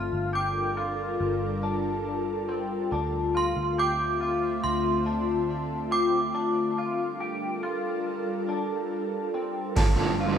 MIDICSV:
0, 0, Header, 1, 7, 480
1, 0, Start_track
1, 0, Tempo, 857143
1, 1632, Time_signature, 4, 2, 24, 8
1, 5814, End_track
2, 0, Start_track
2, 0, Title_t, "Synth bell"
2, 0, Program_c, 0, 98
2, 0, Note_on_c, 0, 89, 87
2, 198, Note_on_c, 0, 86, 72
2, 209, Note_off_c, 0, 89, 0
2, 1133, Note_off_c, 0, 86, 0
2, 1886, Note_on_c, 0, 84, 85
2, 2125, Note_on_c, 0, 86, 93
2, 2126, Note_off_c, 0, 84, 0
2, 2596, Note_on_c, 0, 84, 85
2, 2613, Note_off_c, 0, 86, 0
2, 3316, Note_on_c, 0, 86, 85
2, 3336, Note_off_c, 0, 84, 0
2, 4972, Note_off_c, 0, 86, 0
2, 5814, End_track
3, 0, Start_track
3, 0, Title_t, "Clean electric guitar"
3, 0, Program_c, 1, 27
3, 0, Note_on_c, 1, 65, 68
3, 183, Note_off_c, 1, 65, 0
3, 185, Note_on_c, 1, 67, 75
3, 429, Note_off_c, 1, 67, 0
3, 432, Note_on_c, 1, 65, 66
3, 912, Note_off_c, 1, 65, 0
3, 913, Note_on_c, 1, 62, 68
3, 1391, Note_off_c, 1, 62, 0
3, 1393, Note_on_c, 1, 60, 67
3, 1633, Note_off_c, 1, 60, 0
3, 1636, Note_on_c, 1, 62, 79
3, 1874, Note_off_c, 1, 62, 0
3, 1874, Note_on_c, 1, 65, 70
3, 2113, Note_off_c, 1, 65, 0
3, 2119, Note_on_c, 1, 67, 75
3, 2353, Note_off_c, 1, 67, 0
3, 2356, Note_on_c, 1, 65, 65
3, 2834, Note_off_c, 1, 65, 0
3, 2834, Note_on_c, 1, 62, 65
3, 3309, Note_off_c, 1, 62, 0
3, 3311, Note_on_c, 1, 60, 65
3, 3551, Note_off_c, 1, 60, 0
3, 3553, Note_on_c, 1, 62, 77
3, 3793, Note_off_c, 1, 62, 0
3, 3798, Note_on_c, 1, 65, 66
3, 4033, Note_off_c, 1, 65, 0
3, 4035, Note_on_c, 1, 67, 74
3, 4271, Note_off_c, 1, 67, 0
3, 4273, Note_on_c, 1, 65, 69
3, 4753, Note_off_c, 1, 65, 0
3, 4753, Note_on_c, 1, 62, 62
3, 5230, Note_off_c, 1, 62, 0
3, 5232, Note_on_c, 1, 60, 64
3, 5465, Note_off_c, 1, 60, 0
3, 5467, Note_on_c, 1, 62, 88
3, 5710, Note_off_c, 1, 62, 0
3, 5712, Note_on_c, 1, 65, 79
3, 5814, Note_off_c, 1, 65, 0
3, 5814, End_track
4, 0, Start_track
4, 0, Title_t, "Ambient pad"
4, 0, Program_c, 2, 92
4, 0, Note_on_c, 2, 55, 81
4, 0, Note_on_c, 2, 62, 74
4, 0, Note_on_c, 2, 65, 74
4, 0, Note_on_c, 2, 69, 71
4, 0, Note_on_c, 2, 70, 87
4, 1609, Note_off_c, 2, 55, 0
4, 1609, Note_off_c, 2, 69, 0
4, 1610, Note_off_c, 2, 62, 0
4, 1611, Note_off_c, 2, 70, 0
4, 1638, Note_on_c, 2, 50, 78
4, 1639, Note_on_c, 2, 76, 72
4, 1640, Note_on_c, 2, 57, 68
4, 1640, Note_on_c, 2, 60, 76
4, 3536, Note_off_c, 2, 50, 0
4, 3537, Note_off_c, 2, 57, 0
4, 3537, Note_off_c, 2, 60, 0
4, 3537, Note_off_c, 2, 76, 0
4, 3550, Note_on_c, 2, 55, 75
4, 3552, Note_on_c, 2, 62, 74
4, 3553, Note_on_c, 2, 70, 84
4, 3554, Note_on_c, 2, 69, 73
4, 5446, Note_off_c, 2, 65, 0
4, 5452, Note_off_c, 2, 55, 0
4, 5453, Note_off_c, 2, 62, 0
4, 5453, Note_off_c, 2, 70, 0
4, 5454, Note_off_c, 2, 69, 0
4, 5467, Note_on_c, 2, 55, 86
4, 5468, Note_on_c, 2, 65, 78
4, 5469, Note_on_c, 2, 58, 93
4, 5469, Note_on_c, 2, 69, 77
4, 5470, Note_on_c, 2, 62, 81
4, 5814, Note_off_c, 2, 55, 0
4, 5814, Note_off_c, 2, 58, 0
4, 5814, Note_off_c, 2, 62, 0
4, 5814, Note_off_c, 2, 65, 0
4, 5814, Note_off_c, 2, 69, 0
4, 5814, End_track
5, 0, Start_track
5, 0, Title_t, "Overdriven electric guitar"
5, 0, Program_c, 3, 29
5, 5466, Note_on_c, 3, 43, 89
5, 5472, Note_on_c, 3, 50, 86
5, 5476, Note_on_c, 3, 53, 89
5, 5478, Note_on_c, 3, 58, 85
5, 5482, Note_on_c, 3, 65, 92
5, 5483, Note_on_c, 3, 69, 88
5, 5814, Note_off_c, 3, 43, 0
5, 5814, Note_off_c, 3, 50, 0
5, 5814, Note_off_c, 3, 53, 0
5, 5814, Note_off_c, 3, 58, 0
5, 5814, Note_off_c, 3, 65, 0
5, 5814, Note_off_c, 3, 69, 0
5, 5814, End_track
6, 0, Start_track
6, 0, Title_t, "Picked electric bass"
6, 0, Program_c, 4, 34
6, 72, Note_on_c, 4, 31, 82
6, 650, Note_off_c, 4, 31, 0
6, 675, Note_on_c, 4, 31, 94
6, 1611, Note_off_c, 4, 31, 0
6, 1636, Note_on_c, 4, 38, 97
6, 1976, Note_off_c, 4, 38, 0
6, 1997, Note_on_c, 4, 38, 85
6, 2573, Note_off_c, 4, 38, 0
6, 2601, Note_on_c, 4, 38, 83
6, 3534, Note_off_c, 4, 38, 0
6, 5468, Note_on_c, 4, 31, 92
6, 5814, Note_off_c, 4, 31, 0
6, 5814, End_track
7, 0, Start_track
7, 0, Title_t, "Drums"
7, 5468, Note_on_c, 9, 49, 97
7, 5468, Note_on_c, 9, 51, 58
7, 5469, Note_on_c, 9, 36, 113
7, 5524, Note_off_c, 9, 49, 0
7, 5524, Note_off_c, 9, 51, 0
7, 5525, Note_off_c, 9, 36, 0
7, 5814, End_track
0, 0, End_of_file